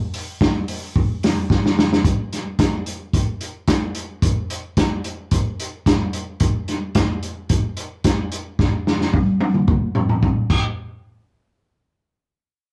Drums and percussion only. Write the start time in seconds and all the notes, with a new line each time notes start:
0.14 open hi-hat
0.41 kick, snare
0.68 open hi-hat
0.96 kick
1.23 snare, open hi-hat
1.50 kick, snare
1.66 snare
1.79 snare
1.93 snare
2.05 kick, closed hi-hat
2.33 snare, closed hi-hat
2.59 kick, snare, closed hi-hat
2.86 closed hi-hat
3.13 kick, closed hi-hat
3.41 closed hi-hat
3.68 kick, snare, closed hi-hat
3.95 closed hi-hat
4.22 kick, closed hi-hat
4.50 closed hi-hat
4.77 kick, snare, closed hi-hat
5.04 closed hi-hat
5.31 kick, closed hi-hat
5.60 closed hi-hat
5.86 kick, snare, closed hi-hat
6.13 closed hi-hat
6.40 kick, closed hi-hat
6.68 snare, closed hi-hat
6.95 kick, snare, closed hi-hat
7.23 closed hi-hat
7.49 kick, closed hi-hat
7.77 closed hi-hat
8.04 kick, snare, closed hi-hat
8.32 closed hi-hat
8.59 kick, snare
8.87 snare
9.01 snare
9.13 kick, high tom
9.40 high tom
9.54 mid tom
9.68 kick, mid tom
9.95 mid tom
10.09 mid tom
10.23 kick, mid tom
10.50 kick, crash